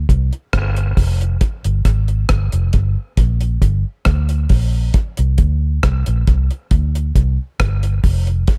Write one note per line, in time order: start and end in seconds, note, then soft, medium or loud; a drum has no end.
0.09 0.30 C2 medium
0.09 kick medium
0.09 closed hi-hat medium
0.33 closed hi-hat soft
0.53 0.93 G1 medium
0.53 kick loud
0.53 cross-stick loud
0.53 closed hi-hat medium
0.77 closed hi-hat soft
0.97 1.37 F1 medium
0.97 kick medium
0.97 open hi-hat medium
1.21 closed hi-hat soft
1.41 kick loud
1.41 closed hi-hat medium
1.64 1.83 G1 medium
1.64 closed hi-hat soft
1.85 2.25 G#1 medium
1.85 kick medium
1.85 cross-stick medium
1.85 closed hi-hat medium
2.08 closed hi-hat soft
2.29 2.51 G1 medium
2.29 kick loud
2.29 cross-stick loud
2.29 closed hi-hat medium
2.52 2.72 F1 medium
2.52 closed hi-hat medium
2.73 2.95 G1 medium
2.73 kick medium
2.73 closed hi-hat medium
3.17 3.57 A#1 medium
3.17 kick loud
3.17 closed hi-hat medium
3.41 closed hi-hat soft
3.62 3.83 G1 medium
3.62 kick medium
3.62 closed hi-hat medium
4.05 4.46 D2 medium
4.05 kick loud
4.05 cross-stick loud
4.05 closed hi-hat medium
4.29 closed hi-hat soft
4.49 4.90 A#1 medium
4.49 kick medium
4.49 open hi-hat medium
4.94 kick loud
4.94 closed hi-hat medium
5.17 5.37 C2 medium
5.17 closed hi-hat medium
5.38 5.78 D2 medium
5.38 kick medium
5.38 closed hi-hat medium
5.83 6.04 C2 medium
5.83 kick loud
5.83 cross-stick loud
5.83 closed hi-hat medium
6.06 6.26 A#1 medium
6.06 closed hi-hat medium
6.27 6.49 C2 medium
6.27 kick medium
6.27 closed hi-hat medium
6.51 closed hi-hat soft
6.71 7.11 D2 medium
6.71 kick loud
6.71 closed hi-hat medium
6.95 closed hi-hat soft
7.16 7.37 C2 medium
7.16 kick medium
7.16 closed hi-hat medium
7.60 8.00 G1 medium
7.60 kick loud
7.60 cross-stick loud
7.60 closed hi-hat medium
7.83 closed hi-hat soft
8.04 8.43 F1 medium
8.04 kick medium
8.04 open hi-hat medium
8.27 closed hi-hat soft
8.48 kick loud
8.48 closed hi-hat medium